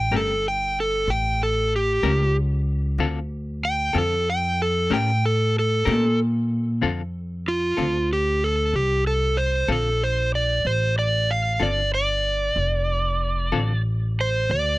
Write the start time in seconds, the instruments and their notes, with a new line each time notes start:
Already playing: electric slide guitar G5
0.11 upright bass G1, clean electric guitar A3 C#4 G4 A#4
0.16 electric slide guitar A4
0.48 electric slide guitar G5
0.80 electric slide guitar A4
1.07 upright bass A1, electric slide guitar G5
1.43 electric slide guitar A4
1.76 electric slide guitar G4
2.03 upright bass C#2, clean electric guitar A3 C#4 G4 A#4
2.98 upright bass D2, clean electric guitar D3 C4 F4 A4
3.65 electric slide guitar G5
3.93 upright bass F2, clean electric guitar D3 C4 F4 A4
3.98 electric slide guitar A4
4.30 electric slide guitar G5
4.62 electric slide guitar A4
4.90 upright bass A2, clean electric guitar A3 C#4 G4 A#4, electric slide guitar G5
5.26 electric slide guitar A4
5.59 electric slide guitar A4
5.85 upright bass A#2, clean electric guitar A3 C#4 G4 A#4
6.81 upright bass F2, clean electric guitar D3 C4 F4 A4
7.48 electric slide guitar F4
7.77 upright bass D2, clean electric guitar D3 C4 F4 A4
8.13 electric slide guitar G4
8.44 electric slide guitar A4
8.73 upright bass C2, electric slide guitar G4
9.07 electric slide guitar A4
9.37 electric slide guitar C5
9.68 upright bass A#1, clean electric guitar D3 C4 F4 A4, electric slide guitar A4
10.04 electric slide guitar C5
10.35 electric slide guitar D5
10.65 upright bass A1, electric slide guitar C5
10.99 electric slide guitar D5
11.31 electric slide guitar F5
11.60 upright bass G1, clean electric guitar D3 C4 F4 A4, electric slide guitar D5
11.94 electric slide guitar D5
12.56 upright bass F1
13.52 upright bass A1, clean electric guitar D3 C4 F4 A4
14.21 electric slide guitar C5
14.50 upright bass D2, electric slide guitar D5